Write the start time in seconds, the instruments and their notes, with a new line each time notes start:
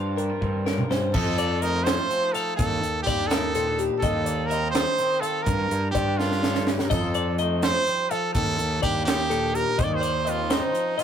Already playing: fingered electric bass G2, clean electric guitar G2 G3 F4 C5 F5
0.18 clean electric guitar G3 D4 A#4, closed hi-hat
0.30 clean electric guitar F4
0.42 fingered electric bass G2, clean electric guitar C4, kick
0.66 clean electric guitar D3 F4 A#4, snare
0.78 mid tom
0.91 fingered electric bass G2, clean electric guitar C5, snare
1.14 fingered electric bass F2, clean electric guitar F3 D#5, trumpet A4, kick, crash
1.38 clean electric guitar D5, closed hi-hat
1.62 clean electric guitar A3 D#4 D#5, trumpet A#4, closed hi-hat
1.84 clean electric guitar F4 C5, trumpet C5, snare, closed hi-hat
2.09 clean electric guitar F3 C4, closed hi-hat
2.23 clean electric guitar D#4
2.32 trumpet A4, clean electric guitar F5, closed hi-hat
2.56 fingered electric bass D#2, clean electric guitar D#3, trumpet A4, kick, closed hi-hat
2.83 fingered electric bass D#2, closed hi-hat
3.03 clean electric guitar G3, trumpet G4, kick
3.07 fingered electric bass D#2, clean electric guitar C4 D5, closed hi-hat
3.19 clean electric guitar D4
3.27 trumpet A4, closed hi-hat
3.31 clean electric guitar D#4 A#4, snare
3.54 clean electric guitar A#2 C4 A4, closed hi-hat
3.67 clean electric guitar D4
3.79 clean electric guitar G4, closed hi-hat
3.99 fingered electric bass D#2, clean electric guitar D#3 D#5, trumpet A4, kick, closed hi-hat
4.26 clean electric guitar D5, closed hi-hat
4.46 trumpet A#4, clean electric guitar D#5
4.51 clean electric guitar G3 C4, closed hi-hat
4.71 trumpet C5, clean electric guitar C5, closed hi-hat
4.75 clean electric guitar D#4, snare
4.98 clean electric guitar D#3 C4, closed hi-hat
5.20 trumpet A4, clean electric guitar F5, closed hi-hat
5.42 trumpet A#4
5.46 clean electric guitar G2, fingered electric bass G2, kick, closed hi-hat
5.71 fingered electric bass G2, closed hi-hat
5.91 clean electric guitar G3 C4 D5, trumpet G4, kick
5.95 fingered electric bass G2, closed hi-hat
6.07 clean electric guitar D4
6.17 clean electric guitar D4 A#4, trumpet F4, snare
6.32 snare
6.42 clean electric guitar D3 D4 A4, snare
6.55 snare
6.66 clean electric guitar G4, snare
6.79 snare
6.84 trumpet A#4
6.89 fingered electric bass F2, clean electric guitar F3 D#5, trumpet A4, kick, closed hi-hat, splash
7.14 clean electric guitar D5, closed hi-hat
7.38 clean electric guitar A3 D#4 D#5, closed hi-hat
7.62 clean electric guitar A3 C5, trumpet C5, snare, closed hi-hat
7.87 clean electric guitar G3, closed hi-hat
8.10 clean electric guitar F3 F5, trumpet A4, closed hi-hat
8.34 fingered electric bass D#2, clean electric guitar D#3, trumpet A4, kick, closed hi-hat
8.59 fingered electric bass D#2, closed hi-hat
8.83 fingered electric bass D#2, clean electric guitar G3 D4 D5, trumpet G4, kick, closed hi-hat
9.05 clean electric guitar D#4 A#4, trumpet G4, snare, closed hi-hat
9.30 clean electric guitar A#2 D4 A4, closed hi-hat
9.54 clean electric guitar G4, trumpet A#4, closed hi-hat
9.78 fingered electric bass D#2, clean electric guitar D#3 D#5, trumpet C5, kick, closed hi-hat
9.84 trumpet D5
9.95 trumpet C5
10.01 clean electric guitar D5, closed hi-hat
10.25 clean electric guitar G3 C4 D#5, closed hi-hat
10.29 trumpet F4
10.50 clean electric guitar G3 C5, trumpet D#4, snare, closed hi-hat
10.72 clean electric guitar F3, closed hi-hat
10.98 clean electric guitar D#3 D#5, trumpet F4, closed hi-hat